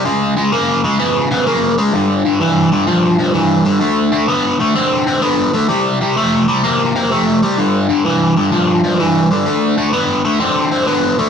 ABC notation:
X:1
M:4/4
L:1/8
Q:"Swing" 1/4=128
K:Gmix
V:1 name="Overdriven electric guitar" clef=bass
[^C,^G,] [C,G,] [C,_B,] [C,G,] [C,=B,] [C,B,] [C,_B,] [C,G,] | [G,,D,] [G,,D,] [G,,E,] [G,,D,] [G,,F,] [G,,F,] [G,,E,] [G,,D,] | [D,A,] [D,A,] [D,B,] [D,A,] [D,C] [D,C] [D,B,] [D,A,] | [C,G,] [C,G,] [C,A,] [C,G,] [C,_B,] [C,B,] [C,A,] [C,G,] |
[G,,D,] [G,,D,] [G,,E,] [G,,D,] [G,,F,] [G,,F,] [G,,E,] [G,,D,] | [D,A,] [D,A,] [D,B,] [D,A,] [D,C] [D,C] [D,B,] [D,A,] |]